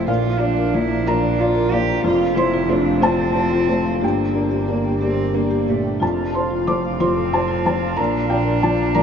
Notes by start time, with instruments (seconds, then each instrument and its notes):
Already playing: double bass F1, felt piano F2 F3 A3 F4 C5 G5 A5, string section F3 C5
0.07 double bass A#1, felt piano A#2 F5, string section D4, cello F4, marimba A#4
0.39 cello D4, felt piano F4 D5, marimba F5
0.57 marimba A#4
0.74 felt piano F3 A#3 D5, cello E4, marimba D5
0.90 marimba A#5
1.07 felt piano A#3 F4 D5 A#5, cello D4, marimba A#4
1.22 marimba D5
1.39 cello F4, felt piano F4 D5, marimba F5
1.55 marimba A#4
1.72 felt piano A#3 F4 D5, cello G4, marimba F5
1.88 marimba A#5
2.04 double bass F1, felt piano F2, string section C4, marimba F4, cello F4
2.36 felt piano F3 C5 C6, cello E4, marimba C5
2.54 marimba F4
2.68 felt piano A3 F4 C5, cello D4, marimba A4
2.86 marimba F5
3.01 felt piano A3 F4 C5 A5, cello C4, marimba F4
3.19 marimba A4
3.35 felt piano F4 C5, marimba C5
3.53 marimba F4
3.68 felt piano A3 F4 C5, marimba C5
3.85 marimba F5
4.01 double bass G1, felt piano G2 G5, string section G3 G4 D5, cello A#3, marimba G4
4.35 felt piano D4 A#4, marimba D5
4.51 marimba G4
4.67 felt piano A#3 D4 A#4, marimba A#4
4.84 marimba G5
5.01 felt piano A#3 D4 A#4, cello C4, marimba G4
5.19 marimba A#4
5.34 cello A#3, felt piano D4 A#4, marimba D5
5.51 marimba G4
5.68 felt piano A#2 D4 G4, cello A3, marimba D5
5.84 marimba G5
6.00 double bass F1, felt piano F2 A5, string section C4 F4 F5, marimba F4
6.34 felt piano F4 C5 C6, marimba C5
6.51 marimba F4
6.67 felt piano F3 F4 C5 D6, marimba A4
6.85 marimba F5
7.00 felt piano F3 F4 C5 C6, cello C4, marimba F4
7.16 marimba A4
7.33 felt piano F4 C5 A5, marimba C5
7.48 marimba F4
7.66 felt piano F3 F4 C5 A5, marimba C5
7.81 marimba F5
7.96 double bass A#1, felt piano A#2 A#5, cello D4, string section D4, marimba A#4
8.28 felt piano F4 D5 G5, marimba F5
8.44 marimba A#4
8.61 felt piano F3 F4 D5 A5, marimba D5
8.78 marimba A#5
8.95 felt piano F3 F4 D5 A#5, marimba A#4